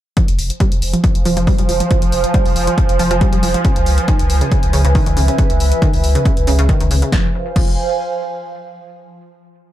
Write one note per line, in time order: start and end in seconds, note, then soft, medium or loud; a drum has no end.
0.17 0.22 F3 medium
0.17 7.17 F3 medium
0.17 3.65 C5 loud
0.17 kick loud
0.17 closed hi-hat medium
0.28 0.38 F1 medium
0.28 closed hi-hat medium
0.34 0.50 F1 loud
0.34 7.12 G#5 medium
0.39 open hi-hat loud
0.48 3.65 F5 medium
0.48 closed hi-hat medium
0.60 0.68 G3 loud
0.60 kick loud
0.60 closed hi-hat medium
0.72 0.81 F1 medium
0.72 closed hi-hat medium
0.82 0.93 F1 medium
0.82 open hi-hat loud
0.93 1.00 F3 medium
0.93 closed hi-hat medium
1.04 1.09 F3 medium
1.04 kick loud
1.04 closed hi-hat medium
1.15 1.25 F1 medium
1.15 closed hi-hat medium
1.25 1.36 F1 loud
1.25 1.28 F3 loud
1.25 open hi-hat loud
1.37 1.47 F1 medium
1.37 1.41 F3 loud
1.37 closed hi-hat medium
1.47 1.55 G3 loud
1.47 kick loud
1.47 open hi-hat medium
1.59 1.68 F1 medium
1.59 1.65 G3 medium
1.59 closed hi-hat medium
1.69 1.80 F1 loud
1.69 1.74 F3 medium
1.69 open hi-hat loud
1.80 1.87 F3 medium
1.80 closed hi-hat medium
1.91 1.96 F3 medium
1.91 kick loud
1.91 closed hi-hat medium
2.02 2.12 F1 medium
2.02 closed hi-hat medium
2.12 2.24 F1 loud
2.12 open hi-hat loud
2.24 closed hi-hat medium
2.34 2.42 G3 loud
2.34 kick loud
2.34 closed hi-hat medium
2.46 2.55 F1 medium
2.46 open hi-hat medium
2.56 2.67 F1 loud
2.56 open hi-hat loud
2.67 2.74 F3 medium
2.67 closed hi-hat medium
2.78 2.83 F3 medium
2.78 kick loud
2.78 closed hi-hat medium
2.89 2.99 F1 medium
2.89 closed hi-hat medium
2.99 3.10 F1 loud
2.99 3.02 F3 loud
2.99 open hi-hat loud
3.11 3.21 F1 medium
3.11 3.15 F3 loud
3.11 closed hi-hat medium
3.21 3.29 G3 loud
3.21 kick loud
3.21 closed hi-hat medium
3.32 3.42 F1 medium
3.32 3.39 G3 medium
3.32 closed hi-hat medium
3.43 3.54 F1 loud
3.43 3.48 F3 medium
3.43 open hi-hat loud
3.54 3.61 F3 medium
3.54 closed hi-hat medium
3.64 3.70 C#3 medium
3.64 7.12 B4 loud
3.64 kick loud
3.64 closed hi-hat medium
3.76 3.86 C#2 medium
3.76 closed hi-hat medium
3.86 3.98 C#2 medium
3.86 open hi-hat loud
3.96 7.13 E5 medium
3.96 closed hi-hat medium
4.08 4.15 D#3 loud
4.08 kick loud
4.08 closed hi-hat medium
4.19 4.29 C#2 medium
4.19 closed hi-hat medium
4.30 4.41 C#2 loud
4.30 open hi-hat loud
4.41 4.48 C#3 medium
4.41 closed hi-hat medium
4.52 4.56 C#3 medium
4.52 kick loud
4.52 closed hi-hat medium
4.63 4.73 C#2 medium
4.63 closed hi-hat medium
4.73 4.84 C#2 loud
4.73 4.76 C#3 loud
4.73 open hi-hat loud
4.85 4.95 C#2 medium
4.85 4.89 C#3 loud
4.85 closed hi-hat medium
4.95 5.02 D#3 loud
4.95 kick loud
4.95 open hi-hat medium
5.06 5.16 C#2 medium
5.06 5.13 D#3 medium
5.06 closed hi-hat medium
5.17 5.28 C#2 loud
5.17 5.22 C#3 medium
5.17 open hi-hat loud
5.28 5.35 C#3 medium
5.28 closed hi-hat medium
5.38 5.43 C#3 medium
5.38 kick loud
5.38 closed hi-hat medium
5.50 5.60 C#2 medium
5.50 closed hi-hat medium
5.60 5.72 C#2 loud
5.60 open hi-hat loud
5.72 closed hi-hat medium
5.82 5.89 D#3 loud
5.82 kick loud
5.82 closed hi-hat medium
5.93 6.03 C#2 medium
5.93 open hi-hat medium
6.04 6.15 C#2 loud
6.04 open hi-hat loud
6.15 6.22 C#3 medium
6.15 closed hi-hat medium
6.25 6.30 C#3 medium
6.25 kick loud
6.25 closed hi-hat medium
6.37 6.47 C#2 medium
6.37 closed hi-hat medium
6.47 6.58 C#2 loud
6.47 6.50 C#3 loud
6.47 open hi-hat loud
6.59 6.69 C#2 medium
6.59 6.63 C#3 loud
6.59 closed hi-hat medium
6.69 6.76 D#3 loud
6.69 kick loud
6.69 closed hi-hat medium
6.80 6.90 C#2 medium
6.80 6.87 D#3 medium
6.80 closed hi-hat medium
6.91 7.02 C#2 loud
6.91 6.96 C#3 medium
6.91 open hi-hat loud
7.02 7.09 C#3 medium
7.02 closed hi-hat medium
7.12 7.25 F1 loud
7.12 7.25 F3 loud
7.12 8.82 C5 medium
7.12 kick loud
7.12 snare medium
7.19 8.82 F5 medium
7.26 8.82 G#5 medium
7.56 7.76 F1 loud
7.56 7.76 F3 medium
7.56 kick loud
7.56 crash medium